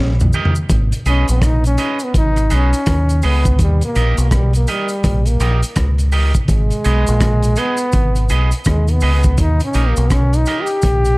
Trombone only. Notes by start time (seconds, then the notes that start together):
Already playing: G3
1.08 C#4
1.31 B3
1.45 D#4
1.67 C#4
2.04 B3
2.18 D#4
2.55 C#4
3.26 B3
3.62 G3
3.85 A#3
4.21 A#3
4.34 G3
4.56 A#3
4.70 G3
5.28 A#3
6.50 G#3
7.59 B3
8.68 G#3
8.92 B3
9.16 B3
9.40 D#4
9.64 C#4
9.88 A#3
10.13 C#4
10.37 D#4
10.62 G4